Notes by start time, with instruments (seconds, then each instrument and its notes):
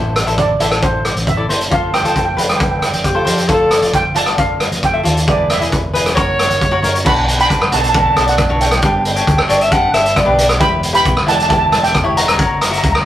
Already playing: fingered electric bass A1, cavaquinho E4 A4 C5, steel pan C5
0.16 cross-stick, closed hi-hat
0.26 fingered electric bass A1, cavaquinho E4 A4 C5, closed hi-hat
0.38 steel pan D5, kick, closed hi-hat
0.59 fingered electric bass A1, cavaquinho E4 A4 C5, steel pan E5, closed hi-hat
0.71 cross-stick, closed hi-hat
0.82 steel pan C5, kick, closed hi-hat
1.05 cross-stick, closed hi-hat
1.15 fingered electric bass A1, closed hi-hat
1.27 steel pan E5, kick, closed hi-hat
1.37 cavaquinho E4 A4 D5
1.49 fingered electric bass F#1, cavaquinho E4 A4 C5, closed hi-hat
1.61 closed hi-hat
1.70 fingered electric bass F1, cavaquinho F4 A4 C5, steel pan F5, kick, closed hi-hat
1.94 steel pan G5, cross-stick, closed hi-hat
2.02 fingered electric bass F1, cavaquinho F4 A4 C5, steel pan G5, closed hi-hat
2.09 steel pan G5
2.16 steel pan G5, kick, closed hi-hat
2.25 steel pan G5
2.33 cavaquinho B4, steel pan G5
2.37 fingered electric bass F1, cavaquinho F4 A4, steel pan G5, closed hi-hat
2.49 steel pan G5, cross-stick, closed hi-hat
2.56 steel pan G5
2.60 steel pan G5, kick, closed hi-hat
2.71 steel pan G5
2.79 steel pan G5, cross-stick, closed hi-hat
2.86 steel pan G5
2.93 fingered electric bass F1, steel pan G5, closed hi-hat
3.04 alto saxophone G4, kick, closed hi-hat
3.15 cavaquinho F4 A4 C5
3.25 fingered electric bass F2, cavaquinho F4 A4 C5, closed hi-hat
3.38 closed hi-hat
3.48 fingered electric bass F1, cavaquinho F4 A4 D5, alto saxophone A4, kick, closed hi-hat
3.71 cross-stick, closed hi-hat
3.81 fingered electric bass F1, cavaquinho F4 A4 D5, closed hi-hat
3.93 steel pan G5, kick, closed hi-hat
4.15 fingered electric bass F1, cavaquinho F4 A4 D5, steel pan A5, closed hi-hat
4.26 cross-stick, closed hi-hat
4.38 steel pan F5, kick, closed hi-hat
4.60 cross-stick, closed hi-hat
4.71 fingered electric bass F1, closed hi-hat
4.83 steel pan G5, kick, closed hi-hat
4.93 cavaquinho F4 A4 E5
5.03 fingered electric bass D#2, cavaquinho F4 A4 D5, closed hi-hat
5.17 closed hi-hat
5.27 fingered electric bass E1, cavaquinho E4 G#4 B4, steel pan D5, kick, closed hi-hat
5.50 steel pan E5, cross-stick, closed hi-hat
5.60 fingered electric bass E1, cavaquinho E4 G#4 B4, closed hi-hat
5.72 kick, closed hi-hat
5.93 fingered electric bass E1, cavaquinho E4 G#4 B4, alto saxophone B4, closed hi-hat
6.06 cross-stick, closed hi-hat
6.15 fingered electric bass F#1, cavaquinho F#4 A#4 C#5, alto saxophone C#5, kick, closed hi-hat
6.39 cross-stick, closed hi-hat
6.50 fingered electric bass F#1, closed hi-hat
6.61 kick, closed hi-hat
6.71 cavaquinho F#4 A#4 C#5
6.82 fingered electric bass F#2, cavaquinho F#4 A#4 C#5, closed hi-hat
6.95 closed hi-hat
7.04 fingered electric bass B1, cavaquinho D4 F#4 B4, steel pan F#5 B5, kick, crash
7.28 closed hi-hat
7.38 cavaquinho D4 F#4 B4, steel pan G5 B5, closed hi-hat
7.50 fingered electric bass F#2, kick, closed hi-hat
7.62 cross-stick
7.72 fingered electric bass B1, cavaquinho D4 F#4 C#5, steel pan F#5 A5, closed hi-hat
7.81 steel pan A5, closed hi-hat
7.89 steel pan A5
7.94 cavaquinho D4 F#4 B4, steel pan A5, kick, closed hi-hat
8.02 steel pan A5
8.10 steel pan A5
8.16 fingered electric bass B1, steel pan A5, cross-stick, closed hi-hat
8.27 steel pan D5 F#5, closed hi-hat
8.38 kick, cross-stick, closed hi-hat
8.49 fingered electric bass B1, cavaquinho D4 F#4 C#5
8.61 steel pan E5 G5, closed hi-hat
8.69 steel pan G5, cross-stick, closed hi-hat
8.77 steel pan G5
8.82 fingered electric bass G1, cavaquinho D4 G4 B4, steel pan G5, kick, closed hi-hat
8.92 steel pan G5
9.00 steel pan G5
9.05 steel pan G5, closed hi-hat
9.15 cavaquinho D4 G4 C#5, steel pan G5, closed hi-hat
9.21 steel pan G5
9.27 fingered electric bass D2, steel pan G5, kick, closed hi-hat
9.38 steel pan G5, cross-stick
9.48 fingered electric bass G1, cavaquinho D4 G4 C#5, alto saxophone D5, closed hi-hat
9.61 alto saxophone E5, closed hi-hat
9.71 cavaquinho D4 G4 B4, alto saxophone F#5, kick, closed hi-hat
9.93 fingered electric bass G1, alto saxophone E5, cross-stick, closed hi-hat
10.05 closed hi-hat
10.16 alto saxophone D5, kick, cross-stick, closed hi-hat
10.25 fingered electric bass B1, cavaquinho D4 G4 B4
10.38 closed hi-hat
10.49 cross-stick, closed hi-hat
10.60 fingered electric bass E1, cavaquinho E4 G4 B4, steel pan G5 B5, kick, closed hi-hat
10.83 closed hi-hat
10.93 cavaquinho E4 G4 B4, steel pan G5 B5, closed hi-hat
11.05 fingered electric bass B1, kick, closed hi-hat
11.17 cross-stick
11.27 fingered electric bass E1, cavaquinho E4 G4 D5, steel pan F#5 A5, closed hi-hat
11.36 steel pan A5, closed hi-hat
11.43 steel pan A5
11.48 cavaquinho E4 G4 D5, steel pan A5, kick, closed hi-hat
11.58 steel pan A5
11.66 steel pan A5
11.72 fingered electric bass E1, steel pan A5, cross-stick, closed hi-hat
11.84 steel pan E5 G5, closed hi-hat
11.95 kick, cross-stick, closed hi-hat
12.04 fingered electric bass E1, cavaquinho E4 G4 C#5
12.17 steel pan F#5 A#5, closed hi-hat
12.26 steel pan A#5, cross-stick, closed hi-hat
12.31 steel pan A#5
12.38 fingered electric bass F#1, cavaquinho F#4 A#4 C#5, steel pan A#5, kick, closed hi-hat
12.46 steel pan A#5
12.55 steel pan A#5
12.61 steel pan A#5, cross-stick, closed hi-hat
12.70 cavaquinho F#4 A#4 E5, steel pan A#5, closed hi-hat
12.78 steel pan A#5
12.84 fingered electric bass C#2, steel pan A#5, kick, closed hi-hat
12.92 steel pan A#5, cross-stick